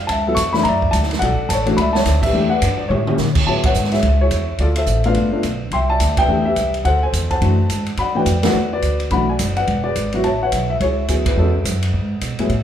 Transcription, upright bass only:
0.08 0.36 C#2 medium
0.36 0.64 E2 medium
0.65 0.92 F#2 medium
0.93 1.20 D2 medium
1.21 1.38 B1 loud
1.38 muted upright bass stroke soft
1.49 1.77 A1 medium
1.77 2.05 C#2 medium
2.05 2.32 D2 medium
2.32 2.61 E2 medium
2.62 2.89 G2 loud
2.89 3.17 A2 medium
3.18 3.46 A#2 medium
3.46 3.63 A2 medium
3.63 muted upright bass stroke soft
3.75 4.02 G#2 medium
4.02 4.30 C#2 medium
4.31 4.58 E2 medium
4.59 4.86 D2 medium
4.86 5.14 A1 medium
5.15 5.42 G1 medium
5.43 5.70 B1 medium
5.71 5.99 C2 medium
6.00 6.27 D2 medium
6.27 6.55 E2 medium
6.56 6.84 C2 medium
6.85 7.12 D2 medium
7.13 7.40 E2 medium
7.41 7.68 F#2 medium
7.69 7.97 G#2 medium
7.97 8.25 G2 medium
8.25 8.53 F2 medium
8.53 8.81 E2 medium
8.82 9.10 D2 medium
9.10 9.38 B1 medium
9.39 9.66 F#1 medium
9.67 9.95 E1 medium
9.95 10.23 G#1 medium
10.24 10.51 A1 medium
10.52 10.79 B1 medium
10.80 11.08 C#2 medium
11.08 11.36 D2 medium
11.37 11.64 E2 medium
11.64 11.92 F#2 medium
11.93 12.20 G#2 medium
12.21 12.38 B2 medium
12.39 muted upright bass stroke soft
12.49 12.63 A2 medium

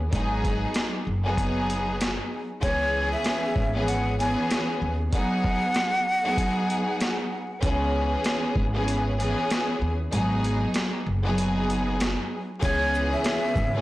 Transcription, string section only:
0.13 1.00 F#3 loud
0.13 1.00 B3 medium
0.13 1.00 D#4 medium
0.13 1.00 G#4 loud
1.25 2.38 F#3 loud
1.25 2.38 B3 medium
1.25 2.38 D#4 medium
1.25 2.38 G#4 loud
2.62 3.64 E3 medium
2.62 3.64 B3 medium
2.62 3.64 C#4 medium
2.62 3.64 G#4 loud
3.74 4.16 E3 medium
3.74 4.16 B3 medium
3.74 4.16 C#4 medium
3.74 4.16 G#4 loud
4.18 4.92 E3 loud
4.18 4.92 B3 loud
4.18 4.92 C#4 medium
4.18 4.92 G#4 loud
5.13 6.00 F#3 loud
5.13 6.00 B3 medium
5.13 6.00 D#4 medium
5.13 6.01 G#4 loud
6.24 7.38 F#3 loud
6.24 7.38 B3 medium
6.24 7.38 D#4 medium
6.24 7.38 G#4 loud
7.62 8.64 E3 medium
7.62 8.64 B3 medium
7.62 8.64 C#4 loud
7.62 8.64 G#4 loud
8.74 9.15 E3 medium
8.74 9.16 B3 medium
8.74 9.16 C#4 medium
8.74 9.16 G#4 loud
9.18 9.92 E3 loud
9.18 9.92 B3 loud
9.18 9.92 C#4 medium
9.18 9.92 G#4 loud
10.12 11.00 F#3 loud
10.12 11.00 B3 medium
10.12 11.00 D#4 medium
10.12 11.00 G#4 loud
11.24 12.38 F#3 loud
11.24 12.38 B3 medium
11.24 12.38 D#4 medium
11.24 12.38 G#4 loud
12.62 13.64 E3 loud
12.62 13.64 B3 medium
12.62 13.64 C#4 loud
12.62 13.64 G#4 loud
13.74 13.81 E3 loud
13.74 13.81 B3 medium
13.74 13.81 C#4 medium
13.74 13.81 G#4 loud

